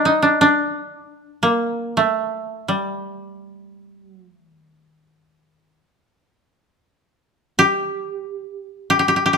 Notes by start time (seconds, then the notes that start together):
Already playing: D4
0.05 D#4
0.22 D4
0.41 D4
1.43 A#3
1.97 A3
2.68 G3
4.04 F#3
4.21 F3
4.39 E3
4.57 D#3
7.59 G4
8.90 G4
8.99 G4
9.08 G4
9.16 G4
9.26 G4
9.33 G4